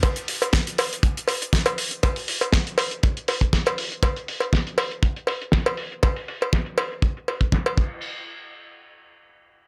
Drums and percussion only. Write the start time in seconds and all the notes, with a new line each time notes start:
0.03 kick, closed hi-hat, cowbell
0.16 closed hi-hat
0.28 open hi-hat
0.42 closed hi-hat, cowbell
0.53 kick, snare, closed hi-hat
0.67 closed hi-hat
0.78 open hi-hat, cowbell
0.93 closed hi-hat
1.03 kick, closed hi-hat
1.17 closed hi-hat
1.28 open hi-hat, cowbell
1.42 closed hi-hat
1.53 kick, snare, closed hi-hat
1.66 closed hi-hat, cowbell
1.78 open hi-hat
1.91 closed hi-hat
2.03 kick, closed hi-hat, cowbell
2.16 open hi-hat
2.28 open hi-hat
2.41 closed hi-hat, cowbell
2.53 kick, snare, closed hi-hat
2.67 closed hi-hat
2.78 open hi-hat, cowbell
2.91 closed hi-hat
3.03 kick, closed hi-hat
3.17 closed hi-hat
3.28 open hi-hat, cowbell
3.41 kick, closed hi-hat
3.53 kick, snare, closed hi-hat
3.66 closed hi-hat, cowbell
3.78 open hi-hat
3.92 closed hi-hat
4.03 kick, closed hi-hat, cowbell
4.16 closed hi-hat
4.28 open hi-hat
4.40 closed hi-hat, cowbell
4.53 kick, snare, closed hi-hat
4.67 closed hi-hat
4.78 open hi-hat, cowbell
4.91 closed hi-hat
5.03 kick, closed hi-hat
5.16 closed hi-hat
5.27 open hi-hat, cowbell
5.42 closed hi-hat
5.52 kick, snare, closed hi-hat
5.66 closed hi-hat, cowbell
5.77 open hi-hat
5.92 closed hi-hat
6.03 kick, closed hi-hat, cowbell
6.16 open hi-hat
6.28 open hi-hat
6.41 closed hi-hat, cowbell
6.53 kick, snare, closed hi-hat
6.66 closed hi-hat
6.78 open hi-hat, cowbell
6.92 closed hi-hat
7.02 kick, closed hi-hat
7.17 closed hi-hat
7.28 open hi-hat, cowbell
7.41 kick, closed hi-hat
7.52 kick, snare, closed hi-hat
7.66 closed hi-hat, cowbell
7.78 kick, crash